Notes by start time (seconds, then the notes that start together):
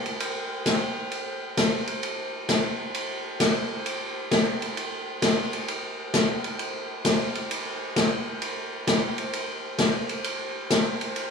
0.06 ride
0.20 ride
0.66 snare, hi-hat pedal, ride
1.11 ride
1.57 snare, hi-hat pedal, ride
1.87 ride
2.03 ride
2.49 snare, hi-hat pedal, ride
2.94 ride
3.40 snare, hi-hat pedal, ride
3.86 ride
4.31 snare, hi-hat pedal, ride
4.62 ride
4.77 ride
5.22 snare, hi-hat pedal, ride
5.53 ride
5.68 ride
6.14 snare, hi-hat pedal, ride
6.44 ride
6.59 ride
7.05 snare, hi-hat pedal, ride
7.35 ride
7.51 ride
7.96 snare, hi-hat pedal, ride
8.42 ride
8.87 snare, hi-hat pedal, ride
9.18 ride
9.33 ride
9.78 snare, hi-hat pedal, ride
10.09 ride
10.24 ride
10.70 snare, hi-hat pedal, ride
11.01 ride
11.16 ride